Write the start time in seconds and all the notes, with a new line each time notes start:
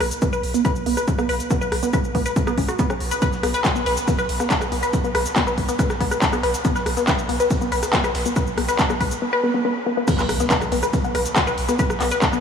0.00 B1 B4, cross-stick, open hi-hat
0.11 closed hi-hat, shaker
0.22 B3, kick, closed hi-hat, shaker
0.33 B1 B4, shaker
0.43 B1, open hi-hat
0.54 B3, closed hi-hat, shaker
0.65 B4, kick, closed hi-hat, shaker
0.76 B1, shaker
0.86 B1 B3, open hi-hat
0.97 B4, cross-stick, closed hi-hat, shaker
1.08 kick, closed hi-hat, shaker
1.18 B1 B3, cross-stick, shaker
1.29 B1 B4, open hi-hat
1.40 closed hi-hat, shaker
1.51 B3, kick, closed hi-hat, shaker
1.61 B1 B4, shaker
1.72 B1, cross-stick, open hi-hat
1.83 B3, closed hi-hat, shaker
1.93 B4, kick, closed hi-hat, shaker
2.04 B1, shaker
2.15 B1 B3, kick, open hi-hat
2.26 B4, closed hi-hat, shaker
2.36 kick, closed hi-hat, shaker
2.47 B1 B3, cross-stick, shaker
2.58 B1 C#4, kick, open hi-hat
2.68 F#4, cross-stick, closed hi-hat, shaker
2.79 B3, kick, closed hi-hat, shaker
2.90 B1 C#4, cross-stick, shaker
3.00 B1, open hi-hat
3.11 B4, closed hi-hat, shaker
3.22 B4, kick, closed hi-hat, shaker
3.33 B1, snare, shaker
3.43 B1 B3, cross-stick, closed hi-hat, open hi-hat
3.54 B4, snare, closed hi-hat, shaker
3.65 kick, snare, clap, closed hi-hat, shaker
3.76 B1 B3, closed hi-hat, shaker
3.86 B1 B4, snare, closed hi-hat, open hi-hat
3.97 closed hi-hat, shaker
4.08 B3, kick, closed hi-hat, open hi-hat, shaker
4.19 B1 B4, shaker
4.29 B1, closed hi-hat, open hi-hat
4.40 B3, cross-stick, snare, closed hi-hat, shaker
4.50 B4, kick, snare, clap, closed hi-hat, shaker
4.61 B1, cross-stick, closed hi-hat, shaker
4.72 B1 B3, closed hi-hat, open hi-hat
4.83 B4, closed hi-hat, shaker
4.93 kick, closed hi-hat, shaker
5.04 B1 B3, shaker
5.15 B1 B4, cross-stick, closed hi-hat, open hi-hat
5.26 snare, closed hi-hat, shaker
5.36 B3, kick, snare, clap, closed hi-hat, shaker
5.47 B1 B4, shaker
5.58 B1, kick, closed hi-hat, open hi-hat
5.69 B3, closed hi-hat, shaker
5.79 B4, kick, closed hi-hat, shaker
5.90 B1, cross-stick, snare, shaker
6.00 B1 B3, kick, snare, closed hi-hat, open hi-hat
6.11 B4, cross-stick, closed hi-hat, shaker
6.22 kick, snare, clap, closed hi-hat, shaker
6.33 B1 B3, cross-stick, shaker
6.43 B1 B4, closed hi-hat, open hi-hat
6.54 snare, closed hi-hat, shaker
6.65 B3, kick, closed hi-hat, shaker
6.76 B1 B4, snare, shaker
6.86 B1, cross-stick, closed hi-hat, open hi-hat
6.97 B3, snare, closed hi-hat, shaker
7.08 B4, kick, snare, clap, closed hi-hat, shaker
7.19 B1, closed hi-hat, shaker
7.29 B1 B3, closed hi-hat, open hi-hat
7.40 B4, closed hi-hat, shaker
7.50 kick, closed hi-hat, open hi-hat, shaker
7.61 B1 B3, shaker
7.72 B1 B4, closed hi-hat, open hi-hat
7.83 cross-stick, snare, closed hi-hat, shaker
7.93 B3, kick, snare, clap, closed hi-hat, shaker
8.04 B1 B4, cross-stick, closed hi-hat, shaker
8.15 B1, snare, closed hi-hat, open hi-hat
8.26 B3, closed hi-hat, shaker
8.36 B4, kick, closed hi-hat, shaker
8.47 B1, shaker
8.58 B1 B3, cross-stick, closed hi-hat, open hi-hat
8.68 B4, snare, closed hi-hat, shaker
8.79 kick, snare, clap, closed hi-hat, shaker
8.90 B1 B3, cross-stick, shaker
9.00 B1 B4, kick, closed hi-hat, open hi-hat
9.11 closed hi-hat, shaker
9.22 B3
9.33 B4
9.43 B3
9.54 B3
9.65 B3
9.86 B3
9.97 B3
10.08 B3, kick, cross-stick, closed hi-hat, crash, impact, shaker
10.19 B1 B4, snare, clap, shaker
10.29 B1, cross-stick, closed hi-hat, open hi-hat
10.40 B3, snare, closed hi-hat, shaker
10.50 B4, kick, snare, clap, closed hi-hat, shaker
10.61 B1, cross-stick, closed hi-hat, shaker
10.72 B1 B3, snare, closed hi-hat, open hi-hat
10.83 B4, cross-stick, closed hi-hat, shaker
10.93 kick, closed hi-hat, open hi-hat, shaker
11.04 B1 B3, shaker
11.15 B1 B4, cross-stick, closed hi-hat, open hi-hat
11.26 snare, closed hi-hat, shaker
11.36 B3, kick, cross-stick, snare, clap, closed hi-hat, shaker
11.47 B1 B4, closed hi-hat, shaker
11.58 B1, closed hi-hat, open hi-hat
11.69 B3, cross-stick, closed hi-hat, shaker
11.79 B4, kick, closed hi-hat, shaker
11.90 B1, cross-stick, shaker
12.00 B1 B3, clap, closed hi-hat, open hi-hat
12.11 B4, snare, closed hi-hat, shaker
12.22 kick, cross-stick, snare, clap, closed hi-hat, shaker
12.33 B1 B3, shaker